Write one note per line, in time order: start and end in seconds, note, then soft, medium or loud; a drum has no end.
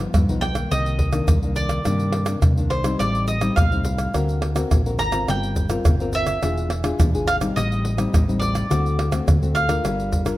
0.00 0.12 G2 medium
0.00 0.23 F3 medium
0.00 0.24 B3 medium
0.00 0.24 D#4 medium
0.00 0.41 F5 medium
0.14 0.68 G2 medium
0.14 0.26 G2 medium
0.14 pandeiro medium
0.14 tamborim medium
0.14 shaker medium
0.14 surdo medium
0.29 0.65 B1 medium
0.29 0.53 F3 medium
0.29 0.53 B3 medium
0.29 0.53 D#4 medium
0.29 pandeiro soft
0.29 shaker soft
0.41 0.71 G5 medium
0.41 pandeiro medium
0.41 tamborim medium
0.55 1.09 D#3 medium
0.55 1.09 A#3 medium
0.55 pandeiro medium
0.55 tamborim medium
0.55 shaker medium
0.71 1.20 C2 loud
0.71 1.26 C3 soft
0.71 1.53 D#5 medium
0.71 pandeiro medium
0.71 tamborim medium
0.71 shaker medium
0.71 surdo medium
0.86 pandeiro soft
0.86 shaker soft
0.99 pandeiro medium
0.99 surdo medium
1.13 1.37 D#3 medium
1.13 1.38 A#3 medium
1.13 1.38 D4 medium
1.13 pandeiro medium
1.13 tamborim medium
1.13 shaker medium
1.28 1.78 C2 medium
1.28 1.83 G2 medium
1.28 pandeiro medium
1.28 tamborim medium
1.28 shaker medium
1.28 surdo loud
1.43 1.81 D#3 medium
1.43 1.82 A#3 medium
1.43 1.82 D4 medium
1.43 pandeiro soft
1.43 shaker soft
1.56 2.38 D5 medium
1.56 pandeiro medium
1.56 shaker medium
1.69 pandeiro medium
1.69 tamborim medium
1.69 shaker medium
1.85 2.35 G2 medium
1.85 2.40 C3 soft
1.85 2.24 D#3 medium
1.85 2.24 A#3 medium
1.85 2.24 D4 medium
1.85 pandeiro medium
1.85 tamborim medium
1.85 shaker medium
1.85 surdo medium
2.00 pandeiro soft
2.00 shaker soft
2.12 pandeiro medium
2.12 tamborim medium
2.26 2.52 D#3 soft
2.26 2.52 A#3 soft
2.26 2.52 D4 medium
2.26 pandeiro medium
2.26 tamborim medium
2.26 shaker medium
2.42 2.97 G2 soft
2.42 2.55 C3 medium
2.42 pandeiro medium
2.42 tamborim medium
2.42 shaker medium
2.42 surdo loud
2.57 2.94 C2 medium
2.57 2.81 D#3 medium
2.57 2.82 A#3 medium
2.57 2.82 D4 medium
2.57 pandeiro soft
2.57 shaker soft
2.70 2.97 C5 medium
2.70 pandeiro medium
2.70 tamborim medium
2.84 3.37 G3 medium
2.84 3.38 C4 medium
2.84 3.38 D#4 medium
2.84 pandeiro medium
2.84 tamborim medium
2.84 shaker medium
2.99 3.49 A1 medium
2.99 3.54 A2 medium
2.99 3.27 D5 medium
2.99 pandeiro medium
2.99 tamborim medium
2.99 shaker medium
2.99 surdo medium
3.15 pandeiro soft
3.15 shaker soft
3.28 3.55 D#5 medium
3.28 pandeiro medium
3.28 shaker medium
3.41 3.66 G3 medium
3.41 3.66 C4 medium
3.41 3.67 D#4 medium
3.41 pandeiro medium
3.41 tamborim medium
3.41 shaker medium
3.56 4.06 C2 medium
3.56 4.11 A2 medium
3.56 4.95 F5 medium
3.56 pandeiro medium
3.56 tamborim medium
3.56 shaker medium
3.56 surdo medium
3.72 4.10 G3 soft
3.72 4.10 C4 medium
3.72 4.10 D#4 medium
3.72 pandeiro soft
3.72 shaker soft
3.85 pandeiro medium
3.85 shaker medium
3.98 pandeiro soft
3.98 tamborim medium
3.98 shaker medium
4.14 4.63 D2 medium
4.14 4.69 D3 soft
4.14 4.53 C4 medium
4.14 4.53 F#4 medium
4.14 4.53 A#4 medium
4.14 pandeiro medium
4.14 tamborim medium
4.14 shaker medium
4.14 surdo medium
4.29 pandeiro soft
4.29 shaker soft
4.42 pandeiro medium
4.42 tamborim medium
4.55 4.80 C4 medium
4.55 4.80 F#4 medium
4.55 4.81 A#4 medium
4.55 pandeiro medium
4.55 tamborim medium
4.55 shaker medium
4.71 4.98 A#1 medium
4.71 5.26 D3 soft
4.71 pandeiro medium
4.71 tamborim medium
4.71 shaker medium
4.71 surdo medium
4.86 5.10 C4 medium
4.86 5.10 F#4 soft
4.86 5.10 A#4 medium
4.86 pandeiro soft
4.86 shaker soft
4.99 5.26 G#1 medium
4.99 5.29 A#5 medium
4.99 pandeiro medium
4.99 tamborim medium
4.99 shaker medium
5.12 5.66 C4 medium
5.12 5.66 F4 medium
5.12 5.66 A#4 medium
5.12 pandeiro medium
5.12 tamborim medium
5.12 shaker medium
5.28 5.77 G1 medium
5.28 5.83 G3 soft
5.28 6.17 G5 medium
5.28 pandeiro medium
5.28 tamborim medium
5.28 shaker medium
5.28 surdo medium
5.43 pandeiro soft
5.43 shaker soft
5.56 pandeiro medium
5.56 shaker medium
5.56 surdo medium
5.70 5.95 C4 medium
5.70 5.95 F4 medium
5.70 5.95 A#4 medium
5.70 pandeiro medium
5.70 tamborim medium
5.70 shaker medium
5.85 6.34 G1 medium
5.85 6.40 D3 medium
5.85 pandeiro medium
5.85 tamborim medium
5.85 shaker medium
5.85 surdo loud
6.00 6.38 C4 medium
6.00 6.38 F4 medium
6.00 6.39 A#4 medium
6.00 pandeiro soft
6.00 shaker soft
6.13 6.96 E5 medium
6.13 pandeiro medium
6.13 shaker medium
6.27 pandeiro medium
6.27 tamborim medium
6.27 shaker medium
6.42 6.91 E1 medium
6.42 6.97 E3 medium
6.42 6.69 D4 medium
6.42 6.70 F4 medium
6.42 6.70 G#4 medium
6.42 pandeiro medium
6.42 tamborim medium
6.42 shaker medium
6.42 surdo medium
6.57 pandeiro soft
6.57 shaker soft
6.70 pandeiro medium
6.70 tamborim medium
6.84 7.08 D4 medium
6.84 7.09 F4 medium
6.84 7.09 G#4 medium
6.84 pandeiro medium
6.84 tamborim medium
6.84 shaker medium
7.00 7.12 E2 medium
7.00 7.54 B2 medium
7.00 pandeiro medium
7.00 tamborim medium
7.00 shaker medium
7.00 surdo loud
7.14 7.50 G#1 medium
7.14 7.38 D4 medium
7.14 7.38 F4 medium
7.14 7.38 G#4 medium
7.14 pandeiro soft
7.14 shaker soft
7.27 7.35 F5 loud
7.27 pandeiro medium
7.27 tamborim medium
7.27 shaker medium
7.41 7.94 G3 medium
7.41 7.94 C4 medium
7.41 7.94 D#4 medium
7.41 pandeiro medium
7.41 tamborim medium
7.41 shaker medium
7.56 8.05 A1 medium
7.56 8.11 A2 medium
7.56 8.38 D#5 medium
7.56 pandeiro medium
7.56 tamborim medium
7.56 shaker medium
7.56 surdo medium
7.72 pandeiro soft
7.72 shaker soft
7.85 pandeiro medium
7.97 8.22 G3 medium
7.97 8.22 C4 medium
7.97 8.23 D#4 medium
7.97 pandeiro medium
7.97 tamborim medium
7.97 shaker medium
8.13 8.62 A1 medium
8.13 8.68 A2 soft
8.13 pandeiro medium
8.13 tamborim medium
8.13 shaker medium
8.13 surdo medium
8.28 8.66 G3 medium
8.28 8.66 C4 medium
8.28 8.67 D#4 medium
8.28 pandeiro soft
8.28 shaker soft
8.39 9.22 D5 medium
8.39 pandeiro medium
8.39 shaker medium
8.55 pandeiro medium
8.55 tamborim medium
8.55 shaker medium
8.70 9.19 D2 medium
8.70 9.24 D3 medium
8.70 9.09 A3 medium
8.70 9.09 C4 medium
8.70 9.09 F#4 medium
8.70 pandeiro medium
8.70 tamborim medium
8.70 shaker medium
8.70 surdo medium
8.86 pandeiro soft
8.86 shaker soft
8.99 pandeiro medium
8.99 tamborim medium
9.11 9.36 A3 medium
9.11 9.36 C4 medium
9.11 9.37 F#4 medium
9.11 pandeiro medium
9.11 tamborim medium
9.11 shaker medium
9.27 9.82 A2 medium
9.27 9.40 D3 medium
9.27 pandeiro medium
9.27 tamborim medium
9.27 shaker medium
9.27 surdo loud
9.42 9.78 D2 medium
9.42 9.66 A3 medium
9.42 9.66 C4 medium
9.42 9.66 F#4 medium
9.42 pandeiro soft
9.42 shaker soft
9.55 10.37 F5 medium
9.55 pandeiro medium
9.55 tamborim medium
9.55 shaker medium
9.69 10.22 D4 medium
9.69 10.22 F4 medium
9.69 10.22 A#4 medium
9.69 pandeiro medium
9.69 tamborim medium
9.69 shaker medium
9.84 10.33 G1 medium
9.84 10.37 G3 medium
9.84 pandeiro medium
9.84 tamborim medium
9.84 shaker medium
9.84 surdo medium
10.00 pandeiro soft
10.00 shaker soft
10.13 pandeiro medium
10.13 shaker medium
10.13 surdo medium
10.25 10.37 D4 medium
10.25 10.37 F4 medium
10.25 10.37 A#4 medium
10.25 pandeiro medium
10.25 tamborim medium
10.25 shaker medium